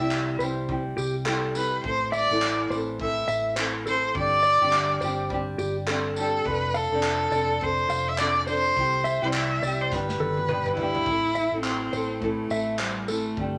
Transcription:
Already playing: cello E5
0.00 fingered electric bass C2, nylon-string guitar C3 G3 C4 E4 G4
0.11 clap
0.39 fingered electric bass C2, nylon-string guitar G3 C4 E4, clean electric guitar C5, tambourine
0.44 nylon-string guitar G4
0.68 nylon-string guitar G3 C4 E4 G4, kick
0.97 fingered electric bass C2, clean electric guitar G4, tambourine
1.25 nylon-string guitar G3 C4 E4 G4, clean electric guitar A4, clap
1.54 nylon-string guitar G3 C4 E4 G4, cello B4, tambourine
1.84 fingered electric bass A1, nylon-string guitar E3 C4 E4 A4, cello C5, kick
2.12 cello D5, clean electric guitar E5, tambourine
2.30 fingered electric bass A1, nylon-string guitar A2 E3 C4 E4 A4
2.42 clap
2.70 fingered electric bass A1, nylon-string guitar E3 C4, clean electric guitar C5, tambourine
2.75 nylon-string guitar E4 A4
3.00 nylon-string guitar E3 C4 E4 A4, cello E5, kick
3.28 fingered electric bass A1, clean electric guitar E5, tambourine
3.56 nylon-string guitar E3 C4 E4, clean electric guitar C5, clap
3.60 nylon-string guitar A4
3.86 nylon-string guitar E3 C4 E4, clean electric guitar A4, cello C5, tambourine
3.90 nylon-string guitar A4
4.14 fingered electric bass G1, nylon-string guitar G3 C4 D4 G4, cello D5, kick
4.43 clean electric guitar D5, tambourine
4.61 fingered electric bass G1, nylon-string guitar G2 D3 G3 C4 D4 G4
4.73 clap
5.01 fingered electric bass G1, nylon-string guitar G3 C4 D4 G4, clean electric guitar C5, tambourine
5.30 nylon-string guitar G3 C4 D4 G4, kick
5.58 fingered electric bass G1, clean electric guitar G4, tambourine
5.87 nylon-string guitar G3 C4 D4 G4, clean electric guitar A4, clap
6.16 nylon-string guitar G3 C4 D4, cello A4, tambourine
6.21 nylon-string guitar G4
6.45 fingered electric bass F1, nylon-string guitar F3 C4 D4, cello B4, kick
6.50 nylon-string guitar A4
6.74 cello A4, clean electric guitar F5, tambourine
6.91 fingered electric bass F1, nylon-string guitar F3 C4 D4 A4
7.03 clap
7.31 fingered electric bass F1, nylon-string guitar F3 C4 D4 A4, clean electric guitar D5, tambourine
7.60 nylon-string guitar F3 C4 D4 A4, cello C5, kick
7.89 fingered electric bass F1, clean electric guitar F5, tambourine
8.08 cello E5
8.18 nylon-string guitar F3 C4 D4 A4, clean electric guitar D5, cello D5, clap
8.46 nylon-string guitar F3 C4 D4 A4, clean electric guitar C5, cello C5, tambourine
8.76 fingered electric bass C2, nylon-string guitar G3 C4 E4 G4, kick
9.04 clean electric guitar E5, tambourine
9.22 fingered electric bass C2, nylon-string guitar C3 G3 C4 E4 G4, cello C5
9.33 cello E5, clap
9.63 fingered electric bass C2, nylon-string guitar G3 C4 E4 G4, clean electric guitar D5, tambourine
9.81 cello C5
9.91 fingered electric bass G1, nylon-string guitar G3 B3 D4, cello B4, kick, snare
9.95 nylon-string guitar G4
10.09 snare
10.20 fingered electric bass G1, clean electric guitar A4, high tom
10.37 high tom
10.49 nylon-string guitar G3 B3 D4, clean electric guitar B4, mid tom
10.53 nylon-string guitar G4
10.66 mid tom
10.76 nylon-string guitar G3, cello E4, floor tom
10.81 nylon-string guitar B3 D4 G4
10.95 floor tom
11.06 fingered electric bass A1, nylon-string guitar E3 C4, kick
11.10 nylon-string guitar E4 A4
11.35 clean electric guitar E5, tambourine
11.52 fingered electric bass A1, nylon-string guitar E4 A4
11.56 nylon-string guitar C4
11.62 cello C4, clap
11.92 fingered electric bass A1, nylon-string guitar E3 C4 E4, clean electric guitar C5, tambourine
11.96 nylon-string guitar A4
12.20 nylon-string guitar A2 E3 C4 E4 A4, cello A3, kick
12.50 fingered electric bass A1, nylon-string guitar E3 C4 E4, clean electric guitar E5, tambourine
12.54 nylon-string guitar A4
12.79 cello G3, clean electric guitar C5, clap
13.08 nylon-string guitar E3 C4 E4 A4, cello A3, clean electric guitar A4, tambourine
13.37 fingered electric bass G1, nylon-string guitar G3 C4 D4 G4, kick

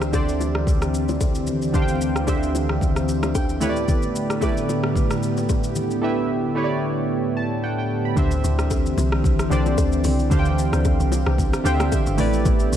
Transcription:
Already playing: analog synth pad D2 E3 C4 G4, synth keys D3 D4 G4 C5 E5
0.02 cross-stick, shaker
0.12 synth keys D3 D4 G4 C5 D5, kick, high bongo, shaker
0.29 shaker
0.41 low bongo, shaker
0.55 cross-stick
0.67 kick, low conga, shaker
0.82 cross-stick, shaker
0.94 shaker
1.09 low bongo, shaker
1.21 kick, high bongo, shaker
1.35 shaker
1.47 low conga, shaker
1.62 shaker
1.73 synth keys D3 D4 G4 C5 F5, kick, low conga, shaker
1.82 synth keys G5
1.88 shaker
2.01 shaker
2.16 cross-stick, shaker
2.26 synth keys D3 D4 G4 C5 E5, kick, high bongo, shaker
2.43 shaker
2.55 low bongo, shaker
2.69 cross-stick
2.81 kick, low conga, shaker
2.96 cross-stick, shaker
3.09 shaker
3.23 cross-stick, low bongo, shaker
3.35 synth keys G5, kick, high bongo, shaker
3.49 shaker
3.60 analog synth pad A2 D3 B3 G4, synth keys A3 E4 G4 B4 C#5 B5, low conga, shaker
3.70 synth keys D5
3.76 shaker
3.88 kick, low conga, shaker
4.02 shaker
4.16 shaker
4.30 cross-stick, shaker
4.41 synth keys A3 E4 G4 B4 D5, kick, high bongo, shaker
4.57 shaker
4.69 low bongo, shaker
4.84 cross-stick
4.96 kick, low conga, shaker
5.11 cross-stick, shaker
5.23 shaker
5.37 low bongo, shaker
5.49 kick, high bongo, shaker
5.64 shaker
5.75 low conga, shaker
5.91 shaker
6.02 synth keys A3 E4 G4 B4 E5
6.55 synth keys A3 E4 G4 B4 C#5
6.64 synth keys D5
7.37 synth keys A5
7.64 synth keys F#5 G5
7.78 synth keys G5
8.05 synth keys B5
8.16 log drum bass D2, synth keys D3 D4 G4 C5 E5, analog synth pad E3 C4 G4, kick, low conga, shaker
8.31 shaker
8.44 log drum bass D2, shaker
8.59 cross-stick, shaker
8.71 kick, high bongo, shaker
8.86 shaker
8.98 log drum bass C2, low bongo, shaker
9.12 cross-stick
9.24 kick, low conga, shaker
9.39 cross-stick, shaker
9.50 log drum bass C2, synth keys D3 D4 G4 C5 D5, shaker
9.66 low bongo, shaker
9.78 log drum bass D2, kick, high bongo, shaker
9.92 shaker
10.04 log drum bass C2, open hi-hat, high bongo, low conga, shaker
10.19 shaker
10.30 log drum bass D2, synth keys D3 D4 G4 C5 F5, kick, low conga, shaker
10.39 synth keys G5
10.45 shaker
10.59 shaker
10.73 log drum bass D2, cross-stick, shaker
10.85 kick, high bongo, shaker
11.00 log drum bass C2, shaker
11.12 low bongo, shaker
11.26 log drum bass C2, cross-stick
11.38 kick, low conga, shaker
11.53 cross-stick, shaker
11.64 log drum bass D2, synth keys D3 D4 G4 C5 F5 G5, shaker
11.74 synth keys E5
11.80 cross-stick, low bongo, shaker
11.92 synth keys E5, kick, high bongo, shaker
12.06 log drum bass G1, shaker
12.17 log drum bass A1, analog synth pad D3 B3, synth keys A3 E4 G4 B4 D5, open hi-hat, high bongo, low conga, shaker
12.33 shaker
12.45 log drum bass A1, kick, low conga, shaker
12.60 shaker
12.72 log drum bass A1, shaker

